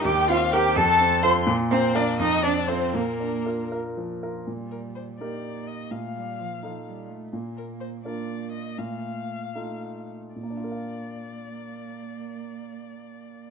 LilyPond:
<<
  \new Staff \with { instrumentName = "Violin" } { \time 6/8 \key bes \major \tempo 4. = 82 g''8 f''8 g''8 a''4 c'''8 | r8 c''8 d''8 ees''8 d''8 c''8 | bes'4. r4. | r8 bes'8 c''8 d''4 ees''8 |
f''2~ f''8 r8 | r8 bes'8 c''8 d''4 ees''8 | f''2~ f''8 r8 | d''2.~ |
d''2. | }
  \new Staff \with { instrumentName = "Grand piano" } { \time 6/8 \key bes \major ees,8 c'8 <g' bes'>8 f,8 c'8 <f' a'>8 | bes,8 bes8 <f' bes'>8 f,8 c'8 <f' a'>8 | bes,8 d'8 <f' bes'>8 <f' bes'>8 f8 <f' bes'>8 | bes,4. <ees' g' bes'>4. |
bes,4. <ees' f' a'>4. | bes,4. <d' f' bes'>4. | bes,4. <ees' f' a'>4. | <bes, bes d' f' bes' f''>2.~ |
<bes, bes d' f' bes' f''>2. | }
  \new Staff \with { instrumentName = "Violin" } { \time 6/8 \key bes \major g'8 f'8 g'8 a'4 c''8 | r8 c'8 d'8 ees'8 d'8 c'8 | bes4. r4. | r2. |
r2. | r2. | r2. | r2. |
r2. | }
  \new Staff \with { instrumentName = "Cello" } { \time 6/8 \key bes \major g'8 f'8 g'8 a'4 c''8 | r8 c'8 d'8 ees'8 d'8 c'8 | bes4. r4. | g4. bes4. |
a8 g8 f8 f8 g8 a8 | bes4. bes4. | a4. a4 r8 | bes2.~ |
bes2. | }
>>